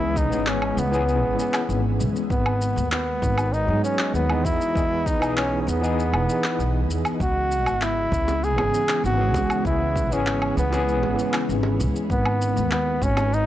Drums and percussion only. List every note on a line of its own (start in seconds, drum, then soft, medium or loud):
0.16 kick loud
0.16 shaker medium
0.32 shaker soft
0.47 clap medium
0.47 shaker soft
0.62 low woodblock medium
0.78 shaker medium
0.93 shaker soft
1.08 shaker soft
1.39 shaker medium
1.54 clap medium
1.54 low woodblock medium
1.54 shaker soft
1.70 shaker soft
2.00 shaker medium
2.16 shaker soft
2.30 kick loud
2.30 shaker soft
2.46 low woodblock medium
2.62 shaker medium
2.77 shaker soft
2.92 clap medium
2.92 shaker soft
3.22 kick loud
3.22 shaker medium
3.38 low woodblock medium
3.38 shaker soft
3.54 shaker soft
3.85 shaker medium
3.99 clap medium
3.99 shaker soft
4.15 shaker soft
4.29 low woodblock medium
4.45 kick loud
4.45 shaker medium
4.61 shaker soft
4.75 kick loud
4.75 shaker soft
5.06 kick loud
5.06 shaker medium
5.22 low woodblock medium
5.22 shaker soft
5.37 clap medium
5.37 shaker soft
5.68 shaker medium
5.84 shaker soft
5.99 shaker soft
6.14 low woodblock medium
6.29 shaker medium
6.44 clap medium
6.44 shaker soft
6.60 shaker soft
6.90 shaker medium
7.05 low woodblock medium
7.05 shaker soft
7.20 kick loud
7.20 shaker soft
7.51 shaker medium
7.66 low woodblock medium
7.66 shaker soft
7.81 clap medium
7.81 shaker soft
8.12 kick loud
8.12 shaker medium
8.28 high bongo medium
8.28 shaker soft
8.44 shaker soft
8.58 high bongo medium
8.58 low woodblock medium
8.74 shaker medium
8.89 clap medium
8.89 shaker soft
9.05 shaker soft
9.34 kick loud
9.34 high bongo medium
9.34 shaker medium
9.50 low woodblock medium
9.50 shaker soft
9.65 kick loud
9.65 shaker soft
9.96 kick loud
9.96 shaker medium
10.12 shaker soft
10.27 clap medium
10.27 shaker soft
10.42 low woodblock medium
10.58 shaker medium
10.73 high bongo medium
10.73 shaker soft
10.88 shaker soft
11.03 high bongo medium
11.19 shaker medium
11.34 clap medium
11.34 low woodblock medium
11.34 shaker soft
11.50 shaker soft
11.63 high bongo medium
11.80 shaker medium
11.96 shaker soft
12.10 kick loud
12.10 shaker soft
12.25 low woodblock medium
12.42 shaker medium
12.57 shaker soft
12.71 clap medium
12.71 shaker soft
13.02 kick loud
13.02 shaker medium
13.17 high bongo medium
13.17 low woodblock medium
13.17 shaker soft
13.33 shaker soft